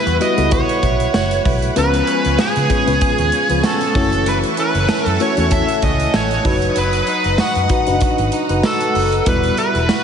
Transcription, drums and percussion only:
0.07 closed hi-hat
0.21 closed hi-hat
0.38 closed hi-hat
0.51 kick, closed hi-hat
0.69 closed hi-hat
0.83 kick, closed hi-hat
1.00 closed hi-hat
1.14 snare, tambourine
1.31 closed hi-hat
1.45 kick, open hi-hat
1.62 closed hi-hat
1.76 closed hi-hat
1.94 closed hi-hat
2.07 closed hi-hat
2.25 closed hi-hat
2.39 snare, tambourine
2.56 closed hi-hat
2.70 kick, closed hi-hat
2.87 closed hi-hat
3.01 kick, closed hi-hat
3.18 closed hi-hat
3.32 closed hi-hat
3.50 closed hi-hat
3.63 snare, tambourine
3.81 closed hi-hat
3.95 kick, open hi-hat
4.13 closed hi-hat
4.26 closed hi-hat
4.43 closed hi-hat
4.57 closed hi-hat
4.75 closed hi-hat
4.89 snare, tambourine
5.06 closed hi-hat
5.20 closed hi-hat
5.37 closed hi-hat
5.51 kick, closed hi-hat
5.69 closed hi-hat
5.82 kick, closed hi-hat
6.00 closed hi-hat
6.14 snare, tambourine
6.31 closed hi-hat
6.45 kick, open hi-hat
6.62 closed hi-hat
6.76 closed hi-hat
6.93 closed hi-hat
7.07 closed hi-hat
7.24 closed hi-hat
7.38 snare, tambourine
7.55 closed hi-hat
7.69 kick, closed hi-hat
7.87 closed hi-hat
8.01 kick, closed hi-hat
8.18 closed hi-hat
8.32 closed hi-hat
8.49 closed hi-hat
8.63 snare, tambourine
8.81 closed hi-hat
8.95 open hi-hat
9.13 closed hi-hat
9.26 kick, closed hi-hat
9.44 closed hi-hat
9.58 closed hi-hat
9.75 closed hi-hat
9.89 snare, tambourine

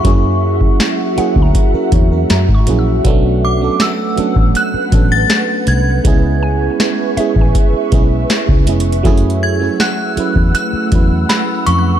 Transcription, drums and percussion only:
0.05 kick, closed hi-hat
0.61 kick
0.80 snare, closed hi-hat
1.18 closed hi-hat
1.36 kick
1.55 kick, closed hi-hat
1.92 kick, closed hi-hat
2.30 snare, closed hi-hat
2.49 kick
2.67 closed hi-hat
3.05 kick, closed hi-hat
3.80 snare, closed hi-hat
4.17 closed hi-hat
4.36 kick
4.55 closed hi-hat
4.92 kick, closed hi-hat
5.30 snare, closed hi-hat
5.67 closed hi-hat
6.05 kick, closed hi-hat
6.80 snare, closed hi-hat
7.17 closed hi-hat
7.36 kick
7.55 kick, closed hi-hat
7.92 kick, closed hi-hat
8.30 snare, closed hi-hat
8.49 kick
8.67 closed hi-hat, open hi-hat
8.80 closed hi-hat
8.92 closed hi-hat
9.05 kick, closed hi-hat
9.17 closed hi-hat
9.30 closed hi-hat
9.80 snare, closed hi-hat
10.17 closed hi-hat
10.36 kick
10.55 closed hi-hat
10.92 kick, closed hi-hat
11.29 snare, closed hi-hat
11.67 closed hi-hat

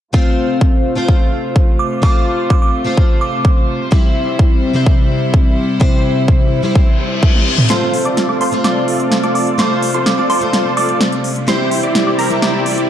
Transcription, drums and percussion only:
0.14 kick
0.61 kick
1.08 kick
1.56 kick
2.03 kick
2.50 kick
2.97 kick
3.45 kick
3.92 kick
4.39 kick
4.86 kick
5.34 kick
5.81 kick
6.28 kick
6.75 kick
7.23 kick, high tom
7.34 high tom
7.58 mid tom
7.70 snare, closed hi-hat
7.94 open hi-hat
8.05 closed hi-hat
8.17 snare, closed hi-hat
8.41 open hi-hat
8.53 closed hi-hat
8.64 snare, closed hi-hat
8.88 open hi-hat
9.00 closed hi-hat
9.12 snare, closed hi-hat
9.23 closed hi-hat
9.35 open hi-hat
9.47 closed hi-hat
9.59 snare, closed hi-hat
9.83 open hi-hat
9.94 closed hi-hat
10.06 snare, closed hi-hat
10.30 open hi-hat
10.42 closed hi-hat
10.53 snare, closed hi-hat
10.77 open hi-hat
10.89 closed hi-hat
11.01 snare, closed hi-hat
11.12 closed hi-hat
11.24 open hi-hat
11.36 closed hi-hat
11.48 snare, closed hi-hat
11.71 open hi-hat
11.83 closed hi-hat
11.95 snare, closed hi-hat
12.19 open hi-hat
12.31 closed hi-hat
12.42 snare, closed hi-hat
12.66 open hi-hat
12.78 closed hi-hat

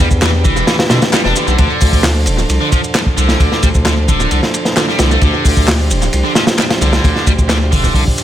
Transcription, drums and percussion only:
0.00 kick
0.11 kick, shaker
0.22 snare, clap, ride, shaker
0.45 kick, ride, shaker
0.56 ride, shaker
0.67 snare, ride, shaker
0.79 snare, ride
0.90 snare, ride, shaker
1.02 snare, ride, shaker
1.13 snare, clap, ride, shaker
1.25 snare
1.36 ride, shaker
1.48 shaker
1.58 kick, ride, shaker
1.80 kick, open hi-hat, shaker
1.92 kick, shaker
2.03 snare, clap, ride, shaker
2.26 ride, shaker
2.38 shaker
2.50 ride, shaker
2.72 kick, ride, shaker
2.84 shaker
2.94 snare, clap, ride, shaker
3.06 kick
3.18 ride, shaker
3.29 snare, shaker
3.40 kick, ride, shaker
3.52 snare
3.63 kick, ride, shaker
3.75 kick, shaker
3.85 snare, clap, ride, shaker
4.08 kick, ride, shaker
4.20 ride, shaker
4.31 ride, shaker
4.43 snare
4.54 ride, shaker
4.65 snare, shaker
4.77 snare, clap, ride, shaker
4.88 snare
4.99 snare, ride, shaker
5.11 shaker
5.21 kick, ride, shaker
5.45 kick, open hi-hat, shaker
5.57 kick, shaker
5.68 snare, clap, ride, shaker
5.91 ride, shaker
6.02 shaker
6.13 ride, shaker
6.35 snare, ride, shaker
6.47 snare, ride, shaker
6.58 snare, clap, ride, shaker
6.70 snare, ride
6.82 ride, shaker
6.93 snare, shaker
7.04 kick, ride, shaker
7.16 snare
7.27 kick, ride, shaker
7.38 kick, shaker
7.49 snare, clap, ride, shaker
7.72 kick, open hi-hat, shaker
7.84 kick, shaker
7.94 kick, open hi-hat, shaker
8.07 kick
8.18 ride, shaker

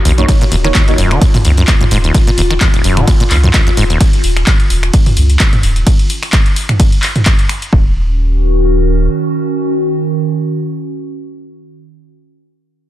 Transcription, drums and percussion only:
0.05 open hi-hat
0.18 closed hi-hat
0.28 kick, closed hi-hat, ride
0.41 closed hi-hat
0.52 open hi-hat
0.64 finger snap, closed hi-hat
0.75 kick, clap, closed hi-hat, ride
0.88 closed hi-hat
0.98 open hi-hat
1.11 finger snap, closed hi-hat
1.21 kick, closed hi-hat, ride
1.34 mid tom, open hi-hat
1.45 open hi-hat
1.57 closed hi-hat
1.68 kick, clap, closed hi-hat, ride
1.81 closed hi-hat, mid tom
1.91 open hi-hat
2.04 closed hi-hat
2.14 kick, closed hi-hat, ride
2.27 closed hi-hat
2.38 open hi-hat
2.51 finger snap, closed hi-hat
2.61 kick, clap, closed hi-hat, ride
2.74 closed hi-hat
2.84 open hi-hat
2.97 finger snap, closed hi-hat, mid tom
3.07 kick, closed hi-hat, ride
3.20 closed hi-hat
3.30 clap, open hi-hat
3.44 closed hi-hat, mid tom
3.54 kick, clap, closed hi-hat, ride
3.67 closed hi-hat
3.77 open hi-hat
3.90 closed hi-hat
4.01 kick, closed hi-hat, ride
4.13 closed hi-hat
4.24 open hi-hat
4.37 finger snap, closed hi-hat
4.47 kick, clap, closed hi-hat, ride
4.60 closed hi-hat
4.70 open hi-hat
4.83 finger snap, closed hi-hat
4.93 kick, closed hi-hat, ride
5.06 mid tom, open hi-hat
5.17 open hi-hat
5.30 closed hi-hat
5.40 kick, clap, closed hi-hat, ride
5.53 closed hi-hat, mid tom
5.63 open hi-hat
5.76 closed hi-hat
5.87 kick, closed hi-hat, ride
5.99 closed hi-hat
6.10 open hi-hat
6.23 finger snap, open hi-hat
6.33 kick, clap, closed hi-hat, ride
6.46 closed hi-hat
6.56 open hi-hat
6.69 finger snap, closed hi-hat, mid tom
6.80 kick, closed hi-hat, ride
6.92 closed hi-hat
7.03 clap, open hi-hat
7.16 closed hi-hat, mid tom
7.26 kick, clap, closed hi-hat, ride
7.39 closed hi-hat
7.49 finger snap, open hi-hat
7.62 closed hi-hat
7.73 kick

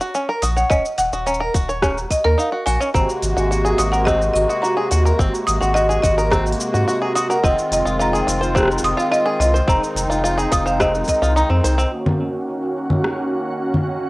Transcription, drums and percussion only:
0.01 cabasa
0.15 cabasa
0.42 open hi-hat, cabasa
0.57 cabasa
0.70 kick, cabasa
0.85 cabasa
0.98 open hi-hat, cabasa
1.13 cabasa
1.27 cabasa
1.34 cabasa
1.54 kick, open hi-hat, cabasa
1.69 cabasa
1.82 kick, cross-stick, cabasa
1.98 cabasa
2.10 kick, open hi-hat, cabasa
2.39 cabasa
2.67 open hi-hat, cabasa
2.81 cabasa
2.94 kick, cabasa
3.09 cabasa
3.22 open hi-hat, cabasa
3.38 cabasa
3.52 cabasa
3.66 cabasa
3.79 open hi-hat, cabasa
3.93 cabasa
4.07 kick, cross-stick, cabasa
4.22 cabasa
4.36 cabasa
4.50 cabasa
4.64 cabasa
4.91 open hi-hat, cabasa
5.06 cabasa
5.19 kick, cabasa
5.35 cabasa
5.48 open hi-hat, cabasa
5.62 cabasa
5.76 cabasa
5.91 cabasa
6.03 kick, open hi-hat, cabasa
6.18 cabasa
6.31 kick, cross-stick, cabasa
6.46 cabasa
6.52 open hi-hat
6.60 cabasa
6.75 cabasa
6.88 cabasa
7.16 open hi-hat, cabasa
7.31 cabasa
7.44 kick, cabasa
7.59 cabasa
7.72 open hi-hat, cabasa
7.87 cabasa
8.01 cabasa
8.15 cabasa
8.28 open hi-hat, cabasa
8.43 cabasa
8.56 kick, cross-stick, cabasa
8.58 cross-stick
8.60 cross-stick
8.63 cross-stick
8.65 cross-stick
8.68 cross-stick, cabasa
8.78 cabasa
8.84 open hi-hat
8.99 cabasa
9.14 cabasa
9.41 open hi-hat, cabasa
9.56 cabasa
9.68 kick, cabasa
9.84 cabasa
9.96 open hi-hat, cabasa
10.11 cabasa
10.25 cabasa
10.39 cabasa
10.52 kick, open hi-hat, cabasa
10.67 cabasa
10.80 kick, cross-stick, cabasa
10.95 cabasa
11.04 kick, open hi-hat, cabasa
11.09 cabasa
11.23 cabasa
11.37 cabasa
11.64 open hi-hat, cabasa
11.79 cabasa
12.06 low conga
12.90 low conga
13.04 cross-stick
13.74 low conga

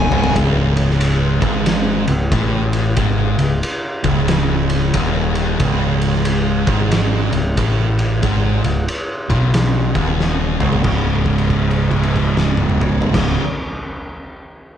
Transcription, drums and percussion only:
0.12 floor tom
0.24 floor tom
0.36 kick, ride
0.77 ride
0.90 snare
1.01 ride
1.42 kick, ride
1.66 snare, ride
2.08 ride
2.32 kick, ride
2.73 ride
2.97 kick, ride
3.39 ride
3.63 ride
4.04 kick, ride
4.28 snare, ride
4.70 ride
4.94 kick, ride
5.35 ride
5.60 kick, ride
6.02 ride
6.14 snare
6.25 ride
6.67 kick, ride
6.92 snare, ride
7.33 ride
7.57 kick, ride
7.99 ride
8.23 kick, ride
8.64 ride
8.88 ride
9.30 kick, ride
9.54 snare, ride
9.95 kick, ride
10.20 snare
10.60 mid tom
10.73 floor tom
10.84 kick, crash
11.26 kick, crash
11.38 crash
11.50 kick, crash
11.71 crash
11.91 kick, crash
12.03 crash
12.16 kick, crash
12.37 snare
12.57 high tom
12.70 mid tom
12.81 mid tom
13.02 floor tom
13.14 kick, snare, crash

